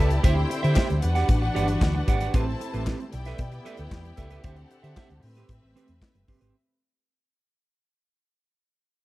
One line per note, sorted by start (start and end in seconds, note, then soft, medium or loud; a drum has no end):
0.00 0.17 C#2 medium
0.00 0.23 B3 medium
0.00 0.21 E4 medium
0.00 1.01 E4 medium
0.00 3.09 G4 loud
0.00 0.11 A4 medium
0.00 0.10 B4 soft
0.00 0.21 D5 medium
0.00 0.21 A5 loud
0.10 muted clean electric guitar stroke soft
0.10 closed hi-hat soft
0.23 0.43 D2 loud
0.23 1.02 D3 medium
0.23 1.02 C4 medium
0.23 1.01 E4 medium
0.23 0.41 G4 medium
0.23 1.01 C5 medium
0.23 0.36 C5 medium
0.23 0.35 E5 loud
0.23 1.01 G5 medium
0.23 kick loud
0.23 closed hi-hat medium
0.36 muted clean electric guitar stroke medium
0.49 muted clean electric guitar stroke soft
0.49 closed hi-hat medium
0.63 0.73 D3 medium
0.63 0.75 G4 medium
0.63 0.75 C5 medium
0.63 0.76 E5 medium
0.63 closed hi-hat soft
0.76 0.93 G4 medium
0.76 0.89 C5 medium
0.76 0.88 E5 medium
0.76 kick medium
0.76 snare loud
0.76 clap loud
0.89 1.00 D2 loud
0.89 muted clean electric guitar stroke soft
0.89 closed hi-hat soft
1.02 1.23 E2 loud
1.02 2.33 E3 medium
1.02 2.31 D4 medium
1.02 2.33 D4 medium
1.02 2.33 F#4 medium
1.02 2.31 B4 medium
1.02 2.31 F#5 medium
1.02 muted clean electric guitar stroke soft
1.02 closed hi-hat medium
1.15 1.29 G4 medium
1.15 1.29 D5 medium
1.15 1.29 F#5 medium
1.15 snare soft
1.15 closed hi-hat soft
1.29 1.48 A1 loud
1.29 kick loud
1.29 closed hi-hat medium
1.42 muted clean electric guitar stroke medium
1.55 1.75 G1 medium
1.55 1.72 G4 medium
1.55 1.68 D5 medium
1.55 1.67 F#5 medium
1.55 closed hi-hat medium
1.68 muted clean electric guitar stroke medium
1.68 closed hi-hat soft
1.81 2.01 D2 medium
1.81 muted clean electric guitar stroke soft
1.81 kick loud
1.81 snare medium
1.81 clap medium
1.95 muted clean electric guitar stroke medium
2.08 2.27 G#1 medium
2.08 2.21 G4 medium
2.08 2.20 D5 medium
2.08 2.20 F#5 medium
2.08 kick medium
2.08 closed hi-hat medium
2.21 2.34 G4 medium
2.21 2.34 D5 medium
2.21 2.34 F#5 medium
2.21 closed hi-hat soft
2.34 2.53 A1 loud
2.34 3.12 A3 medium
2.34 2.51 C4 medium
2.34 3.13 C4 medium
2.34 3.11 E4 medium
2.34 2.47 G4 medium
2.34 2.46 B4 medium
2.34 3.11 C5 medium
2.34 3.11 A5 loud
2.34 kick loud
2.34 closed hi-hat medium
2.47 muted clean electric guitar stroke medium
2.60 muted clean electric guitar stroke soft
2.60 closed hi-hat medium
2.73 2.93 A1 loud
2.73 2.86 C4 medium
2.73 2.86 G4 medium
2.73 2.87 B4 medium
2.73 closed hi-hat soft
2.87 3.03 C4 medium
2.87 3.00 G4 medium
2.87 2.99 B4 loud
2.87 kick medium
2.87 snare loud
2.87 clap loud
3.00 muted clean electric guitar stroke soft
3.00 closed hi-hat soft
3.13 3.32 B1 loud
3.13 4.43 B3 medium
3.13 4.41 E4 medium
3.13 5.21 E4 medium
3.13 6.51 G4 medium
3.13 4.42 D5 medium
3.13 4.42 G5 loud
3.13 muted clean electric guitar stroke soft
3.13 closed hi-hat medium
3.25 3.40 A4 medium
3.25 3.40 B4 medium
3.25 3.39 E5 medium
3.25 snare soft
3.25 closed hi-hat soft
3.38 3.58 B2 loud
3.38 kick loud
3.38 closed hi-hat medium
3.52 muted clean electric guitar stroke soft
3.52 closed hi-hat soft
3.65 3.82 A4 medium
3.65 3.78 B4 medium
3.65 3.77 E5 medium
3.65 closed hi-hat medium
3.77 3.88 D2 medium
3.77 muted clean electric guitar stroke soft
3.77 closed hi-hat soft
3.91 muted clean electric guitar stroke soft
3.91 kick loud
3.91 snare loud
3.91 clap medium
4.05 muted clean electric guitar stroke medium
4.05 closed hi-hat soft
4.17 4.37 C#2 medium
4.17 4.31 A4 medium
4.17 4.31 B4 medium
4.17 4.30 E5 medium
4.17 kick medium
4.17 closed hi-hat medium
4.30 4.43 A4 medium
4.30 4.44 B4 medium
4.30 4.44 E5 medium
4.30 closed hi-hat soft
4.44 4.63 D2 loud
4.44 5.22 D3 medium
4.44 6.52 C4 medium
4.44 5.21 C4 medium
4.44 4.61 G4 medium
4.44 5.21 A4 medium
4.44 4.57 C5 medium
4.44 4.56 E5 medium
4.44 5.21 F#5 medium
4.44 kick loud
4.44 closed hi-hat medium
4.56 muted clean electric guitar stroke soft
4.56 closed hi-hat soft
4.70 muted clean electric guitar stroke soft
4.70 closed hi-hat medium
4.83 4.93 D3 medium
4.83 4.95 G4 soft
4.83 4.96 C5 medium
4.83 4.96 E5 medium
4.83 closed hi-hat soft
4.96 5.13 G4 medium
4.96 5.10 C5 loud
4.96 5.09 E5 loud
4.96 kick loud
4.96 snare loud
4.96 clap loud
5.10 5.20 D2 medium
5.10 muted clean electric guitar stroke soft
5.10 closed hi-hat soft
5.23 5.42 A2 loud
5.23 6.53 A3 medium
5.23 6.52 C4 medium
5.23 6.52 B4 medium
5.23 6.52 E5 medium
5.23 muted clean electric guitar stroke soft
5.23 open hi-hat medium
5.35 5.50 C4 medium
5.35 5.50 G4 medium
5.35 5.49 B4 medium
5.35 snare soft
5.35 closed hi-hat soft
5.49 5.59 A2 loud
5.49 kick loud
5.49 closed hi-hat medium
5.62 5.72 A1 medium
5.62 muted clean electric guitar stroke soft
5.76 5.92 C4 loud
5.76 5.88 G4 medium
5.76 5.87 B4 medium
5.76 closed hi-hat medium
5.88 5.98 E2 medium
5.88 muted clean electric guitar stroke medium
5.88 closed hi-hat soft
6.02 muted clean electric guitar stroke soft
6.02 kick medium
6.02 snare loud
6.02 clap medium
6.15 6.24 F#1 medium
6.15 muted clean electric guitar stroke soft
6.15 closed hi-hat soft
6.28 6.38 G1 loud
6.28 6.41 C4 medium
6.28 6.40 G4 medium
6.28 6.40 B4 medium
6.28 kick medium
6.28 open hi-hat medium
6.41 6.51 G#1 medium
6.41 6.55 C4 soft
6.41 6.55 G4 medium
6.41 6.54 B4 medium
6.41 closed hi-hat soft